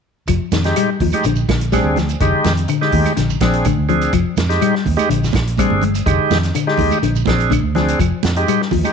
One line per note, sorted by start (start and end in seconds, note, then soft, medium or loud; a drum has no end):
0.27 0.38 F1 medium
0.27 0.49 F3 medium
0.27 kick medium
0.27 closed hi-hat medium
0.27 high conga soft
0.27 claves medium
0.27 shekere medium
0.52 0.72 F2 medium
0.52 0.74 D#3 medium
0.52 snare medium
0.52 closed hi-hat soft
0.52 high conga medium
0.52 shekere medium
0.64 0.90 G#3 medium
0.64 0.90 D#4 medium
0.64 0.90 G4 medium
0.64 snare soft
0.64 closed hi-hat soft
0.64 shekere soft
0.76 0.98 G3 medium
0.76 closed hi-hat medium
0.76 high conga soft
0.76 claves medium
0.76 shekere medium
1.00 1.11 D#2 medium
1.00 1.22 F3 medium
1.00 kick medium
1.00 open hi-hat medium
1.00 low conga medium
1.00 shekere soft
1.12 1.25 G#3 medium
1.12 1.25 D#4 medium
1.12 1.25 G4 medium
1.12 closed hi-hat soft
1.12 high conga medium
1.12 claves medium
1.12 shekere medium
1.23 1.45 A#1 medium
1.23 1.46 D3 medium
1.23 closed hi-hat medium
1.23 shekere medium
1.36 shekere medium
1.49 1.79 A#1 medium
1.49 1.70 D3 medium
1.49 kick medium
1.49 snare medium
1.49 closed hi-hat medium
1.49 high conga medium
1.49 claves medium
1.61 closed hi-hat medium
1.61 shekere soft
1.72 1.94 G3 medium
1.72 1.98 C4 medium
1.72 1.98 D4 medium
1.72 1.98 G#4 medium
1.72 kick medium
1.72 snare soft
1.72 closed hi-hat medium
1.72 high conga medium
1.72 claves medium
1.72 shekere medium
1.84 2.15 D2 medium
1.84 high conga medium
1.96 2.18 F3 medium
1.96 snare soft
1.96 closed hi-hat soft
1.96 low conga medium
1.96 shekere soft
2.09 closed hi-hat soft
2.09 shekere medium
2.20 2.31 F1 medium
2.20 2.42 D3 medium
2.20 2.53 G#3 medium
2.20 2.53 D#4 medium
2.20 2.53 G4 medium
2.20 kick medium
2.20 closed hi-hat medium
2.20 high conga soft
2.20 claves medium
2.20 shekere medium
2.44 2.65 F2 medium
2.44 2.66 D#3 medium
2.44 snare medium
2.44 closed hi-hat soft
2.44 high conga medium
2.44 shekere medium
2.57 closed hi-hat soft
2.57 shekere soft
2.68 2.90 D3 medium
2.68 closed hi-hat medium
2.68 high conga soft
2.68 claves medium
2.68 shekere medium
2.81 3.13 G#3 medium
2.81 3.13 D#4 medium
2.81 3.13 G4 medium
2.81 snare soft
2.92 3.03 D#2 medium
2.92 3.14 D#3 medium
2.92 kick medium
2.92 open hi-hat medium
2.92 high conga medium
2.92 low conga medium
2.92 shekere soft
3.05 closed hi-hat soft
3.05 high conga medium
3.05 claves medium
3.05 shekere medium
3.17 3.37 A#1 loud
3.17 3.38 D3 medium
3.17 snare soft
3.17 closed hi-hat medium
3.17 high conga soft
3.17 shekere medium
3.30 shekere medium
3.40 3.72 A#1 medium
3.40 3.63 F3 medium
3.40 3.67 C4 medium
3.40 3.67 D4 medium
3.40 3.67 G#4 medium
3.40 kick medium
3.40 snare medium
3.40 closed hi-hat soft
3.40 high conga medium
3.40 claves soft
3.53 closed hi-hat soft
3.53 shekere soft
3.65 3.87 D3 medium
3.65 kick medium
3.65 closed hi-hat medium
3.65 high conga medium
3.65 claves medium
3.65 shekere medium
3.78 4.08 D2 medium
3.89 4.11 F3 medium
3.89 4.13 C4 medium
3.89 4.13 D4 medium
3.89 4.13 G#4 medium
3.89 closed hi-hat soft
3.89 low conga medium
3.89 shekere soft
4.01 closed hi-hat soft
4.01 shekere medium
4.13 4.24 F1 loud
4.13 4.35 F3 medium
4.13 kick medium
4.13 closed hi-hat medium
4.13 claves medium
4.13 shekere medium
4.37 4.57 F2 medium
4.37 muted clean electric guitar stroke medium
4.37 snare medium
4.37 closed hi-hat soft
4.37 high conga medium
4.37 shekere medium
4.49 4.75 G#3 medium
4.49 4.75 D#4 medium
4.49 4.75 G4 medium
4.49 snare soft
4.49 closed hi-hat medium
4.49 shekere soft
4.61 4.83 G3 medium
4.61 closed hi-hat medium
4.61 claves medium
4.61 shekere medium
4.75 snare soft
4.85 4.96 D#2 medium
4.85 kick medium
4.85 open hi-hat medium
4.85 high conga medium
4.85 low conga medium
4.85 shekere soft
4.97 5.09 G#3 medium
4.97 5.09 D#4 medium
4.97 5.09 G4 medium
4.97 closed hi-hat soft
4.97 high conga medium
4.97 claves medium
4.97 shekere medium
5.09 5.30 A#1 medium
5.09 5.31 D3 medium
5.09 closed hi-hat medium
5.09 high conga soft
5.09 shekere medium
5.24 snare soft
5.24 shekere medium
5.33 5.65 A#1 medium
5.33 muted clean electric guitar stroke medium
5.33 kick medium
5.33 snare medium
5.33 closed hi-hat soft
5.33 high conga medium
5.33 low conga medium
5.33 claves medium
5.47 closed hi-hat soft
5.47 shekere soft
5.58 5.80 G3 medium
5.58 5.84 C4 medium
5.58 5.84 D4 medium
5.58 5.84 G#4 medium
5.58 kick medium
5.58 closed hi-hat medium
5.58 high conga medium
5.58 claves medium
5.58 shekere medium
5.70 6.01 G1 medium
5.70 high conga medium
5.82 6.04 G#3 medium
5.82 closed hi-hat soft
5.82 low conga medium
5.82 shekere soft
5.95 closed hi-hat soft
5.95 shekere medium
6.06 6.17 F1 medium
6.06 6.28 D3 medium
6.06 6.38 G#3 medium
6.06 6.38 D#4 medium
6.06 6.38 G4 medium
6.06 kick medium
6.06 closed hi-hat medium
6.06 high conga soft
6.06 claves medium
6.06 shekere medium
6.30 6.51 F2 medium
6.30 6.52 D#3 medium
6.30 snare medium
6.30 closed hi-hat soft
6.30 high conga medium
6.30 shekere medium
6.43 snare soft
6.43 closed hi-hat medium
6.43 shekere soft
6.54 6.76 D3 medium
6.54 closed hi-hat medium
6.54 high conga soft
6.54 claves medium
6.54 shekere medium
6.67 6.98 G#3 medium
6.67 6.98 D#4 medium
6.67 6.99 G4 medium
6.67 snare soft
6.77 6.89 D#2 medium
6.77 7.00 D#3 medium
6.77 kick medium
6.77 open hi-hat medium
6.77 low conga medium
6.77 shekere soft
6.90 closed hi-hat soft
6.90 high conga medium
6.90 claves medium
6.90 shekere medium
7.02 7.23 A#1 medium
7.02 7.24 D3 medium
7.02 closed hi-hat medium
7.02 shekere medium
7.16 shekere medium
7.26 7.58 A#1 medium
7.26 7.48 F3 medium
7.26 7.52 C4 medium
7.26 7.53 D4 medium
7.26 7.53 G#4 medium
7.26 kick medium
7.26 snare medium
7.26 closed hi-hat soft
7.26 high conga medium
7.26 low conga medium
7.26 claves soft
7.40 closed hi-hat soft
7.40 shekere soft
7.50 7.72 D3 medium
7.50 kick medium
7.50 closed hi-hat medium
7.50 high conga medium
7.50 claves medium
7.50 shekere medium
7.63 7.93 D2 medium
7.75 7.97 F3 medium
7.75 7.99 C4 medium
7.75 7.99 D4 medium
7.75 7.99 G#4 medium
7.75 snare soft
7.75 closed hi-hat soft
7.75 low conga medium
7.75 shekere soft
7.88 closed hi-hat soft
7.88 shekere medium
7.99 8.10 F1 loud
7.99 8.21 F3 medium
7.99 kick medium
7.99 closed hi-hat medium
7.99 high conga soft
7.99 claves medium
7.99 shekere medium
8.23 8.44 F2 medium
8.23 muted clean electric guitar stroke medium
8.23 snare medium
8.23 closed hi-hat soft
8.23 high conga medium
8.23 shekere medium
8.36 8.61 G#3 medium
8.36 8.61 D#4 medium
8.36 8.62 G4 medium
8.36 closed hi-hat soft
8.36 shekere soft
8.47 8.69 G3 medium
8.47 closed hi-hat medium
8.47 high conga soft
8.47 claves medium
8.47 shekere medium
8.62 snare soft
8.71 8.82 D#2 medium
8.71 8.93 F3 medium
8.71 kick medium
8.71 open hi-hat medium
8.71 low conga medium
8.71 shekere soft
8.84 8.93 G#3 medium
8.84 8.93 D#4 medium
8.84 8.93 G4 medium
8.84 closed hi-hat soft
8.84 high conga medium
8.84 claves medium
8.84 shekere medium